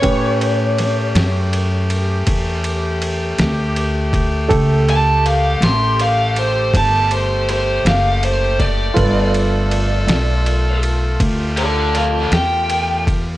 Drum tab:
RD |xxxxxxxxxxxx|xxxxxxxxxxxx|xxxxxxxxxxxx|
SD |--oo-----o--|---o-----o--|---o-----o--|
BD |o-----o----o|o-----o----o|o-----o----o|